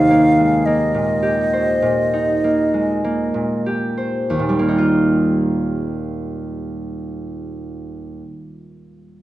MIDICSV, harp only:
0, 0, Header, 1, 2, 480
1, 0, Start_track
1, 0, Key_signature, -3, "major"
1, 0, Tempo, 1153846
1, 760, Tempo, 1214575
1, 1240, Tempo, 1250000
1, 1718, Time_signature, 4, 2, 24, 8
1, 3613, End_track
2, 0, Start_track
2, 0, Title_t, "Harp"
2, 0, Program_c, 0, 46
2, 0, Note_on_c, 0, 39, 43
2, 0, Note_on_c, 0, 63, 33
2, 0, Note_on_c, 0, 67, 33
2, 0, Note_on_c, 0, 72, 37
2, 44, Note_on_c, 0, 58, 35
2, 160, Note_on_c, 0, 56, 30
2, 273, Note_off_c, 0, 58, 0
2, 278, Note_on_c, 0, 58, 33
2, 358, Note_off_c, 0, 56, 0
2, 393, Note_on_c, 0, 46, 34
2, 505, Note_off_c, 0, 67, 0
2, 510, Note_on_c, 0, 67, 34
2, 633, Note_off_c, 0, 72, 0
2, 638, Note_on_c, 0, 72, 37
2, 753, Note_off_c, 0, 46, 0
2, 758, Note_on_c, 0, 46, 34
2, 877, Note_off_c, 0, 63, 0
2, 882, Note_on_c, 0, 63, 33
2, 998, Note_off_c, 0, 58, 0
2, 1002, Note_on_c, 0, 58, 35
2, 1120, Note_on_c, 0, 56, 28
2, 1236, Note_off_c, 0, 58, 0
2, 1241, Note_on_c, 0, 58, 35
2, 1322, Note_off_c, 0, 56, 0
2, 1350, Note_off_c, 0, 46, 0
2, 1355, Note_on_c, 0, 46, 28
2, 1398, Note_off_c, 0, 39, 0
2, 1474, Note_off_c, 0, 67, 0
2, 1479, Note_on_c, 0, 67, 31
2, 1594, Note_off_c, 0, 72, 0
2, 1598, Note_on_c, 0, 72, 28
2, 1723, Note_on_c, 0, 39, 43
2, 1736, Note_off_c, 0, 46, 0
2, 1737, Note_off_c, 0, 72, 0
2, 1759, Note_on_c, 0, 46, 40
2, 1796, Note_on_c, 0, 55, 41
2, 1830, Note_off_c, 0, 58, 0
2, 1835, Note_on_c, 0, 58, 40
2, 1866, Note_off_c, 0, 63, 0
2, 1871, Note_on_c, 0, 63, 41
2, 1909, Note_on_c, 0, 65, 43
2, 2976, Note_off_c, 0, 67, 0
2, 3175, Note_off_c, 0, 55, 0
2, 3215, Note_off_c, 0, 58, 0
2, 3220, Note_off_c, 0, 39, 0
2, 3251, Note_off_c, 0, 63, 0
2, 3256, Note_off_c, 0, 46, 0
2, 3288, Note_off_c, 0, 65, 0
2, 3613, End_track
0, 0, End_of_file